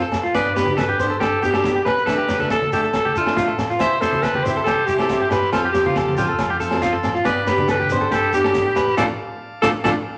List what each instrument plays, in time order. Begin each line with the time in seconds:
0.01 tine electric piano F#2, clean electric guitar A4
0.12 snare, low conga, low agogo, shekere
0.23 clean electric guitar F4, shekere
0.35 tine electric piano G2, steel-string acoustic guitar B3 D4 G4, alto saxophone B4, clean electric guitar D5, kick, snare, low agogo, shekere
0.55 steel-string acoustic guitar B3 D4 G4, alto saxophone G4, clean electric guitar B4, snare, shekere
0.66 steel-string acoustic guitar G4, high conga
0.70 steel-string acoustic guitar D4
0.77 tine electric piano G2, clean electric guitar A4, alto saxophone B4, kick, snare, low agogo, shekere
0.89 clean electric guitar G4, snare, high conga
0.99 steel-string acoustic guitar B3 D4 G4, alto saxophone C5, snare, low conga, shekere
1.10 clean electric guitar A4
1.20 tine electric piano G2, clean electric guitar G4, alto saxophone A4, kick, snare, low agogo, shekere
1.42 tine electric piano G2, steel-string acoustic guitar B3 D4 G4, clean electric guitar G4, alto saxophone G4, shekere
1.53 steel-string acoustic guitar D4 G4, clean electric guitar A4, snare, low agogo
1.64 steel-string acoustic guitar B3 D4 G4, kick, snare, shekere
1.75 tine electric piano D2, clean electric guitar G4
1.85 clean electric guitar B4, alto saxophone B4, snare, low conga, low agogo
1.98 shekere
2.06 tine electric piano D2, steel-string acoustic guitar F3 A3 D4 A4, clean electric guitar A4, kick, snare, low agogo, shekere
2.18 clean electric guitar G4
2.28 steel-string acoustic guitar F3 A4, muted steel-string acoustic guitar stroke, snare, shekere
2.39 steel-string acoustic guitar A3 D4 A4, clean electric guitar A4, high conga
2.50 tine electric piano D2, clean electric guitar A4, alto saxophone A4, kick, snare, low agogo, shekere
2.61 snare, high conga
2.72 steel-string acoustic guitar F3 A3 D4 A4, clean electric guitar G4, alto saxophone A4, snare, low conga, shekere
2.84 clean electric guitar A4, shekere
2.93 tine electric piano D2, alto saxophone A4, kick, snare, low agogo, shekere
3.05 clean electric guitar G4, high conga
3.15 tine electric piano D2, steel-string acoustic guitar A3 D4 A4, alto saxophone F4, clean electric guitar A4, muted steel-string acoustic guitar stroke, shekere
3.26 steel-string acoustic guitar A3 D4 A4, snare, low agogo
3.36 steel-string acoustic guitar F3 A3 D4 A4, clean electric guitar F4, kick, snare, low conga, shekere
3.48 tine electric piano A2, clean electric guitar A4
3.58 snare, low conga, low agogo, shekere
3.70 clean electric guitar F4, snare, shekere
3.79 steel-string acoustic guitar G3 C4 E4 G4, alto saxophone C5, transistor combo organ E5 G5 C6, clean electric guitar E5, kick, snare, low agogo, shekere
4.01 steel-string acoustic guitar G3 C4 E4 G4, alto saxophone A4, clean electric guitar C5, snare, shekere
4.13 steel-string acoustic guitar C4 E4, muted steel-string acoustic guitar stroke, high conga
4.22 tine electric piano C2, clean electric guitar A4, alto saxophone B4, kick, snare, low agogo, shekere
4.34 clean electric guitar G4, snare, high conga
4.43 steel-string acoustic guitar G3 C4, alto saxophone C5, low conga, shekere
4.47 steel-string acoustic guitar E4 G4
4.57 clean electric guitar A4
4.64 tine electric piano C2, clean electric guitar G4, alto saxophone A4, kick, snare, low agogo, shekere
4.86 tine electric piano C2, steel-string acoustic guitar G3 C4, alto saxophone G4, clean electric guitar G4, shekere
4.91 steel-string acoustic guitar E4 G4
4.98 steel-string acoustic guitar C4 E4 G4, clean electric guitar A4, snare, low agogo
5.09 steel-string acoustic guitar G3 C4 E4 G4, kick, snare, shekere
5.20 tine electric piano G2, clean electric guitar G4
5.29 alto saxophone G4, clean electric guitar B4, snare, low conga, low agogo, shekere
5.42 snare, shekere
5.52 tine electric piano F2, steel-string acoustic guitar F3 C4 F4 A4, alto saxophone F4, clean electric guitar A4, transistor combo organ F5 A5, kick, snare, low agogo, shekere
5.65 clean electric guitar G4
5.72 steel-string acoustic guitar F3 C4 F4, alto saxophone G4, snare, shekere
5.77 steel-string acoustic guitar A4
5.85 steel-string acoustic guitar C4 F4 A4, clean electric guitar F4, high conga
5.96 tine electric piano F2, clean electric guitar A4, kick, snare, low agogo, shekere
6.07 snare, high conga
6.17 steel-string acoustic guitar F3 C4 F4 A4, alto saxophone F4, clean electric guitar G4, low conga, shekere
6.29 clean electric guitar A4
6.39 tine electric piano F2, kick, snare, low agogo, shekere
6.50 clean electric guitar G4
6.60 tine electric piano F2, steel-string acoustic guitar F3 C4 F4 A4, clean electric guitar A4, shekere
6.71 steel-string acoustic guitar C4 F4 A4, snare, low agogo
6.82 steel-string acoustic guitar F3 C4 F4 A4, clean electric guitar F4, kick, snare, shekere
6.93 tine electric piano F#2, clean electric guitar A4
7.03 snare, low conga, low agogo, shekere
7.15 clean electric guitar F4, snare, shekere
7.25 tine electric piano G2, steel-string acoustic guitar B3 D4 G4, alto saxophone B4, clean electric guitar D5, transistor combo organ G5 B5 D6, kick, snare, low agogo, shekere
7.47 steel-string acoustic guitar B3 D4 G4, alto saxophone G4, clean electric guitar B4, snare, shekere
7.57 steel-string acoustic guitar D4 G4, high conga
7.68 tine electric piano G2, clean electric guitar A4, alto saxophone B4, kick, snare, low agogo, shekere
7.80 clean electric guitar G4, snare, high conga
7.90 steel-string acoustic guitar B3 D4 G4, alto saxophone C5, snare, low conga, shekere
8.01 clean electric guitar A4
8.11 tine electric piano G2, clean electric guitar G4, alto saxophone A4, kick, snare, low agogo, shekere
8.33 tine electric piano G2, steel-string acoustic guitar B3 D4 G4, clean electric guitar G4, alto saxophone G4, shekere
8.44 steel-string acoustic guitar G4, clean electric guitar A4, snare, low agogo
8.49 steel-string acoustic guitar D4
8.54 steel-string acoustic guitar B3 D4, kick, snare, shekere
8.58 steel-string acoustic guitar G4
8.66 tine electric piano A2, clean electric guitar G4
8.76 clean electric guitar B4, snare, low conga, low agogo, shekere
8.87 snare, shekere
8.97 tine electric piano D2, steel-string acoustic guitar A3 D4 F4, clean electric guitar F4 A4 D5, alto saxophone A4, transistor combo organ F5 A5, kick, snare, low conga, low agogo, shekere
9.62 tine electric piano D2, steel-string acoustic guitar A3 D4 F4, clean electric guitar F4 A4 D5, alto saxophone A4, kick, snare, low conga, low agogo, shekere
9.84 tine electric piano D2, steel-string acoustic guitar A3 D4 F4, clean electric guitar F4 A4 D5, alto saxophone A4, kick, snare, low conga, low agogo, shekere